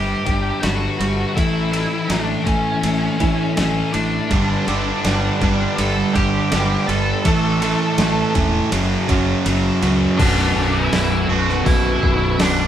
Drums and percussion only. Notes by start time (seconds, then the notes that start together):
0.26 kick, ride
0.63 snare, ride
1.01 ride
1.37 kick, ride
1.73 ride
2.10 snare, ride
2.47 kick, ride
2.83 ride
3.20 kick, ride
3.57 snare, ride
3.94 ride
4.31 kick, ride
4.68 ride
5.05 snare, ride
5.41 kick, ride
5.78 ride
6.15 kick, ride
6.52 snare, ride
6.89 ride
7.25 kick, ride
7.62 ride
7.98 snare, ride
8.35 kick, ride
8.72 ride
9.09 kick, ride
9.46 ride
9.83 ride
10.19 kick, open hi-hat, crash
10.93 snare, open hi-hat
11.49 snare
11.66 kick, open hi-hat
12.03 kick
12.39 snare, open hi-hat